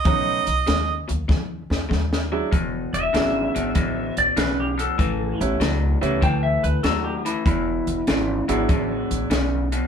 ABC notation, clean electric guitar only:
X:1
M:4/4
L:1/8
Q:"Swing" 1/4=97
K:Bdor
V:1 name="Clean electric guitar" clef=bass
[B,,F,]2 [B,,G,] [B,,F,] [B,,F,]2 [B,,G,] [B,,F,] | [E,,B,,]2 [E,,C,] [E,,B,,] [E,,B,,]2 [E,,C,] [E,,B,,] | [A,,E,]2 [A,,F,] [A,,E,] [A,,E,]2 [A,,F,] [A,,E,] | [E,,B,,]2 [E,,C,] [E,,B,,] [E,,B,,]2 [E,,C,] [E,,B,,] |]